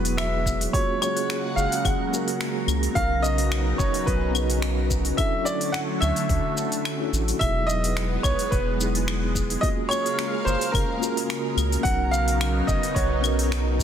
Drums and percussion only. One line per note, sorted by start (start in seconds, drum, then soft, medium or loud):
0.05 open hi-hat medium
0.05 shaker soft
0.18 finger snap loud
0.18 open hi-hat soft
0.18 claves medium
0.18 shaker soft
0.46 kick medium
0.46 shaker medium
0.61 open hi-hat medium
0.61 shaker soft
0.74 kick loud
0.74 open hi-hat soft
0.74 shaker soft
1.02 claves medium
1.02 shaker medium
1.17 open hi-hat medium
1.17 shaker soft
1.30 finger snap loud
1.30 open hi-hat soft
1.30 shaker soft
1.58 shaker medium
1.72 open hi-hat medium
1.72 shaker soft
1.85 kick loud
1.85 open hi-hat soft
1.85 claves medium
1.85 shaker soft
2.14 shaker medium
2.28 open hi-hat medium
2.28 shaker soft
2.41 finger snap loud
2.41 open hi-hat soft
2.41 shaker soft
2.68 claves medium
2.68 shaker medium
2.83 open hi-hat medium
2.83 shaker soft
2.96 kick loud
2.96 open hi-hat soft
2.96 shaker soft
3.24 shaker medium
3.38 open hi-hat medium
3.38 shaker soft
3.52 finger snap loud
3.52 open hi-hat soft
3.52 claves medium
3.52 shaker soft
3.79 kick loud
3.79 shaker medium
3.94 open hi-hat medium
3.94 shaker soft
4.07 kick loud
4.07 open hi-hat soft
4.07 shaker soft
4.35 claves medium
4.35 shaker medium
4.50 open hi-hat medium
4.50 shaker soft
4.62 finger snap loud
4.62 open hi-hat soft
4.62 shaker soft
4.90 kick medium
4.90 shaker medium
5.05 open hi-hat medium
5.05 shaker soft
5.18 kick loud
5.18 open hi-hat soft
5.18 claves medium
5.18 shaker soft
5.46 shaker medium
5.61 open hi-hat soft
5.61 shaker soft
5.74 finger snap loud
5.74 open hi-hat soft
5.74 shaker soft
6.02 claves medium
6.02 shaker medium
6.16 open hi-hat medium
6.16 shaker soft
6.29 kick loud
6.29 open hi-hat soft
6.29 shaker soft
6.57 shaker medium
6.72 open hi-hat soft
6.72 shaker soft
6.85 finger snap loud
6.85 open hi-hat soft
6.85 claves medium
6.85 shaker soft
7.14 shaker medium
7.28 open hi-hat medium
7.28 shaker soft
7.41 kick loud
7.41 open hi-hat soft
7.41 claves medium
7.41 shaker soft
7.69 shaker medium
7.84 open hi-hat medium
7.84 shaker soft
7.97 finger snap medium
7.97 open hi-hat soft
7.97 shaker soft
8.24 kick loud
8.24 claves medium
8.24 shaker medium
8.39 open hi-hat medium
8.39 shaker soft
8.52 kick loud
8.52 open hi-hat soft
8.52 shaker soft
8.81 shaker medium
8.95 open hi-hat medium
8.95 shaker soft
9.08 finger snap loud
9.08 open hi-hat soft
9.08 claves medium
9.08 shaker soft
9.35 kick medium
9.35 shaker medium
9.50 open hi-hat medium
9.50 shaker soft
9.63 kick loud
9.63 open hi-hat soft
9.63 shaker soft
9.91 claves medium
9.91 shaker medium
10.06 open hi-hat medium
10.06 shaker soft
10.19 finger snap loud
10.19 open hi-hat soft
10.19 shaker soft
10.47 shaker medium
10.61 open hi-hat medium
10.61 shaker soft
10.74 kick loud
10.74 open hi-hat soft
10.74 claves medium
10.74 shaker soft
11.03 shaker medium
11.17 open hi-hat medium
11.17 shaker soft
11.30 finger snap loud
11.30 open hi-hat soft
11.30 shaker soft
11.58 claves medium
11.58 shaker medium
11.72 open hi-hat medium
11.72 shaker soft
11.85 kick loud
11.85 open hi-hat soft
11.85 shaker soft
12.13 shaker medium
12.28 open hi-hat medium
12.28 shaker soft
12.41 finger snap loud
12.41 open hi-hat soft
12.41 claves medium
12.41 shaker soft
12.68 kick loud
12.68 shaker medium
12.83 open hi-hat medium
12.83 shaker soft
12.96 kick loud
12.96 open hi-hat soft
12.96 shaker soft
13.24 claves medium
13.24 shaker medium
13.39 open hi-hat medium
13.39 shaker soft
13.52 finger snap medium
13.52 open hi-hat soft
13.52 shaker soft
13.79 kick medium
13.79 shaker medium